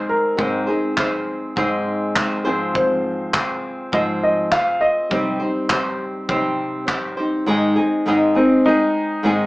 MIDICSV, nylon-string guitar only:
0, 0, Header, 1, 2, 480
1, 0, Start_track
1, 0, Key_signature, -4, "major"
1, 0, Tempo, 590551
1, 311, Time_signature, 4, 2, 24, 8
1, 7692, End_track
2, 0, Start_track
2, 0, Title_t, "Nylon-string guitar"
2, 0, Program_c, 0, 24
2, 0, Note_on_c, 0, 56, 75
2, 0, Note_on_c, 0, 60, 59
2, 0, Note_on_c, 0, 63, 55
2, 0, Note_on_c, 0, 68, 60
2, 0, Note_on_c, 0, 72, 62
2, 303, Note_on_c, 0, 44, 79
2, 305, Note_off_c, 0, 56, 0
2, 308, Note_off_c, 0, 60, 0
2, 308, Note_on_c, 0, 56, 73
2, 309, Note_off_c, 0, 63, 0
2, 311, Note_on_c, 0, 60, 71
2, 314, Note_off_c, 0, 68, 0
2, 317, Note_on_c, 0, 68, 74
2, 318, Note_off_c, 0, 72, 0
2, 318, Note_on_c, 0, 63, 75
2, 321, Note_on_c, 0, 72, 81
2, 532, Note_off_c, 0, 72, 0
2, 542, Note_on_c, 0, 72, 46
2, 544, Note_off_c, 0, 68, 0
2, 548, Note_off_c, 0, 44, 0
2, 551, Note_off_c, 0, 56, 0
2, 552, Note_off_c, 0, 60, 0
2, 553, Note_off_c, 0, 63, 0
2, 554, Note_on_c, 0, 68, 46
2, 562, Note_on_c, 0, 63, 38
2, 571, Note_on_c, 0, 60, 41
2, 777, Note_off_c, 0, 60, 0
2, 787, Note_off_c, 0, 63, 0
2, 787, Note_on_c, 0, 60, 56
2, 788, Note_off_c, 0, 72, 0
2, 794, Note_off_c, 0, 68, 0
2, 797, Note_on_c, 0, 63, 56
2, 805, Note_on_c, 0, 68, 64
2, 811, Note_on_c, 0, 72, 66
2, 1267, Note_on_c, 0, 44, 73
2, 1271, Note_off_c, 0, 60, 0
2, 1271, Note_off_c, 0, 63, 0
2, 1275, Note_on_c, 0, 60, 82
2, 1276, Note_on_c, 0, 56, 77
2, 1279, Note_off_c, 0, 68, 0
2, 1281, Note_on_c, 0, 63, 86
2, 1283, Note_off_c, 0, 72, 0
2, 1283, Note_on_c, 0, 68, 84
2, 1287, Note_on_c, 0, 72, 79
2, 1747, Note_off_c, 0, 60, 0
2, 1751, Note_on_c, 0, 60, 64
2, 1752, Note_off_c, 0, 44, 0
2, 1752, Note_off_c, 0, 63, 0
2, 1761, Note_on_c, 0, 63, 59
2, 1768, Note_off_c, 0, 68, 0
2, 1771, Note_on_c, 0, 68, 69
2, 1775, Note_off_c, 0, 72, 0
2, 1778, Note_on_c, 0, 72, 67
2, 1979, Note_off_c, 0, 72, 0
2, 1985, Note_off_c, 0, 68, 0
2, 1989, Note_on_c, 0, 72, 69
2, 1993, Note_off_c, 0, 60, 0
2, 1995, Note_on_c, 0, 68, 67
2, 1996, Note_off_c, 0, 63, 0
2, 2000, Note_on_c, 0, 65, 66
2, 2003, Note_off_c, 0, 56, 0
2, 2004, Note_on_c, 0, 60, 65
2, 2006, Note_on_c, 0, 53, 64
2, 2009, Note_on_c, 0, 44, 59
2, 2705, Note_off_c, 0, 60, 0
2, 2706, Note_off_c, 0, 65, 0
2, 2709, Note_on_c, 0, 60, 56
2, 2715, Note_on_c, 0, 65, 60
2, 2716, Note_off_c, 0, 68, 0
2, 2722, Note_off_c, 0, 53, 0
2, 2724, Note_off_c, 0, 44, 0
2, 2726, Note_on_c, 0, 68, 57
2, 2730, Note_off_c, 0, 72, 0
2, 2733, Note_on_c, 0, 72, 58
2, 3187, Note_on_c, 0, 44, 75
2, 3189, Note_off_c, 0, 65, 0
2, 3192, Note_on_c, 0, 53, 68
2, 3193, Note_off_c, 0, 68, 0
2, 3195, Note_off_c, 0, 60, 0
2, 3198, Note_on_c, 0, 60, 76
2, 3199, Note_on_c, 0, 65, 76
2, 3203, Note_off_c, 0, 72, 0
2, 3203, Note_on_c, 0, 68, 79
2, 3206, Note_on_c, 0, 72, 85
2, 3665, Note_off_c, 0, 60, 0
2, 3668, Note_on_c, 0, 60, 57
2, 3670, Note_off_c, 0, 65, 0
2, 3672, Note_off_c, 0, 44, 0
2, 3675, Note_off_c, 0, 53, 0
2, 3676, Note_off_c, 0, 68, 0
2, 3680, Note_on_c, 0, 65, 54
2, 3685, Note_on_c, 0, 68, 56
2, 3692, Note_off_c, 0, 72, 0
2, 3695, Note_on_c, 0, 72, 66
2, 4149, Note_on_c, 0, 48, 76
2, 4151, Note_on_c, 0, 55, 80
2, 4154, Note_off_c, 0, 60, 0
2, 4157, Note_off_c, 0, 65, 0
2, 4157, Note_on_c, 0, 60, 75
2, 4160, Note_off_c, 0, 68, 0
2, 4160, Note_on_c, 0, 63, 80
2, 4161, Note_off_c, 0, 72, 0
2, 4163, Note_on_c, 0, 67, 83
2, 4164, Note_on_c, 0, 72, 80
2, 4376, Note_off_c, 0, 72, 0
2, 4386, Note_off_c, 0, 67, 0
2, 4386, Note_on_c, 0, 72, 50
2, 4393, Note_off_c, 0, 48, 0
2, 4393, Note_off_c, 0, 63, 0
2, 4394, Note_off_c, 0, 55, 0
2, 4395, Note_on_c, 0, 67, 44
2, 4397, Note_off_c, 0, 60, 0
2, 4403, Note_on_c, 0, 63, 41
2, 4414, Note_on_c, 0, 60, 36
2, 4616, Note_off_c, 0, 60, 0
2, 4625, Note_on_c, 0, 60, 65
2, 4626, Note_off_c, 0, 63, 0
2, 4632, Note_off_c, 0, 72, 0
2, 4634, Note_off_c, 0, 67, 0
2, 4636, Note_on_c, 0, 63, 67
2, 4643, Note_on_c, 0, 67, 68
2, 4652, Note_on_c, 0, 72, 74
2, 5109, Note_on_c, 0, 48, 71
2, 5113, Note_off_c, 0, 60, 0
2, 5113, Note_on_c, 0, 55, 75
2, 5115, Note_off_c, 0, 63, 0
2, 5116, Note_off_c, 0, 67, 0
2, 5116, Note_on_c, 0, 60, 80
2, 5118, Note_on_c, 0, 63, 78
2, 5124, Note_off_c, 0, 72, 0
2, 5126, Note_on_c, 0, 67, 81
2, 5127, Note_on_c, 0, 72, 90
2, 5578, Note_off_c, 0, 60, 0
2, 5581, Note_on_c, 0, 60, 66
2, 5589, Note_off_c, 0, 63, 0
2, 5591, Note_off_c, 0, 67, 0
2, 5592, Note_off_c, 0, 48, 0
2, 5592, Note_on_c, 0, 63, 63
2, 5594, Note_off_c, 0, 55, 0
2, 5601, Note_on_c, 0, 67, 73
2, 5606, Note_off_c, 0, 72, 0
2, 5610, Note_on_c, 0, 72, 72
2, 5818, Note_off_c, 0, 72, 0
2, 5824, Note_off_c, 0, 67, 0
2, 5827, Note_on_c, 0, 72, 51
2, 5828, Note_off_c, 0, 60, 0
2, 5834, Note_off_c, 0, 63, 0
2, 5834, Note_on_c, 0, 67, 49
2, 5844, Note_on_c, 0, 63, 49
2, 5850, Note_on_c, 0, 60, 43
2, 6067, Note_off_c, 0, 60, 0
2, 6067, Note_on_c, 0, 44, 94
2, 6071, Note_off_c, 0, 72, 0
2, 6071, Note_on_c, 0, 51, 93
2, 6072, Note_off_c, 0, 63, 0
2, 6074, Note_off_c, 0, 67, 0
2, 6074, Note_on_c, 0, 56, 98
2, 6077, Note_on_c, 0, 60, 92
2, 6082, Note_on_c, 0, 63, 93
2, 6085, Note_on_c, 0, 68, 97
2, 6297, Note_off_c, 0, 68, 0
2, 6307, Note_on_c, 0, 68, 69
2, 6309, Note_off_c, 0, 63, 0
2, 6310, Note_off_c, 0, 44, 0
2, 6312, Note_off_c, 0, 51, 0
2, 6314, Note_off_c, 0, 56, 0
2, 6315, Note_off_c, 0, 60, 0
2, 6319, Note_on_c, 0, 63, 55
2, 6328, Note_on_c, 0, 60, 55
2, 6337, Note_on_c, 0, 56, 53
2, 6548, Note_off_c, 0, 56, 0
2, 6549, Note_on_c, 0, 44, 86
2, 6550, Note_off_c, 0, 68, 0
2, 6553, Note_on_c, 0, 51, 85
2, 6554, Note_off_c, 0, 60, 0
2, 6556, Note_off_c, 0, 63, 0
2, 6558, Note_on_c, 0, 56, 87
2, 6563, Note_on_c, 0, 60, 96
2, 6566, Note_on_c, 0, 63, 107
2, 6570, Note_on_c, 0, 68, 98
2, 6777, Note_off_c, 0, 68, 0
2, 6787, Note_on_c, 0, 68, 60
2, 6788, Note_off_c, 0, 63, 0
2, 6790, Note_off_c, 0, 44, 0
2, 6793, Note_off_c, 0, 51, 0
2, 6794, Note_off_c, 0, 60, 0
2, 6795, Note_off_c, 0, 56, 0
2, 6798, Note_on_c, 0, 63, 57
2, 6804, Note_on_c, 0, 60, 50
2, 6812, Note_on_c, 0, 56, 52
2, 7017, Note_off_c, 0, 56, 0
2, 7027, Note_on_c, 0, 56, 61
2, 7028, Note_off_c, 0, 60, 0
2, 7029, Note_off_c, 0, 68, 0
2, 7035, Note_off_c, 0, 63, 0
2, 7038, Note_on_c, 0, 60, 67
2, 7048, Note_on_c, 0, 63, 60
2, 7055, Note_on_c, 0, 68, 71
2, 7502, Note_on_c, 0, 44, 82
2, 7507, Note_off_c, 0, 56, 0
2, 7508, Note_on_c, 0, 51, 82
2, 7509, Note_off_c, 0, 63, 0
2, 7510, Note_on_c, 0, 56, 85
2, 7513, Note_off_c, 0, 60, 0
2, 7516, Note_on_c, 0, 60, 85
2, 7519, Note_on_c, 0, 63, 90
2, 7520, Note_off_c, 0, 68, 0
2, 7523, Note_on_c, 0, 68, 90
2, 7692, Note_off_c, 0, 44, 0
2, 7692, Note_off_c, 0, 51, 0
2, 7692, Note_off_c, 0, 56, 0
2, 7692, Note_off_c, 0, 60, 0
2, 7692, Note_off_c, 0, 63, 0
2, 7692, Note_off_c, 0, 68, 0
2, 7692, End_track
0, 0, End_of_file